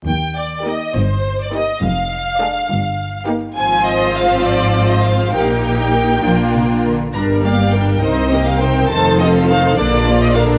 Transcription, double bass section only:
X:1
M:6/8
L:1/8
Q:3/8=68
K:Eb
V:1 name="Double bass section" clef=bass
E,,3 G,,,3 | F,,,3 G,,,3 | A,,,6 | B,,,3 B,,,2 z |
[K:Bb] G,,,3 C,,3 | F,,,3 B,,,3 |]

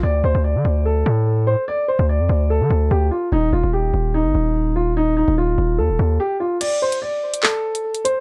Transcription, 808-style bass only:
X:1
M:4/4
L:1/16
Q:1/4=146
K:Dphr
V:1 name="808-style bass" clef=bass
D,,2 D,, D,,2 D, D,,4 A,,4- A,, z | z3 D,,2 F,, D,,3 D, D,,2 D,,2 z2 | E,,,2 E,,, E,,,3 E,,,3 G,,, E,,,6- | E,,,3 E,,,2 D,,, E,,,2 E,, E,,, E,,2 z4 |
z16 |]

